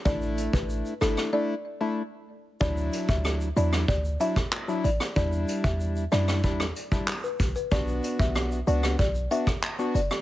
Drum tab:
HH |--x---x---------|--x---x---x---x-|--x---x---x---x-|--x---x---x---x-|
SH |xxxxxxxx--------|xxxxxxxxxxxxxxxx|xxxxxxxxxxxxxxxx|xxxxxxxxxxxxxxxx|
CP |----------------|------------x---|------------x---|------------x---|
SD |------rr--------|----r--r---r---r|------rr-r--r---|----r--r---r---r|
BD |o--o------------|o--o----o--o----|o--o----o--o--o-|o--o----o--o----|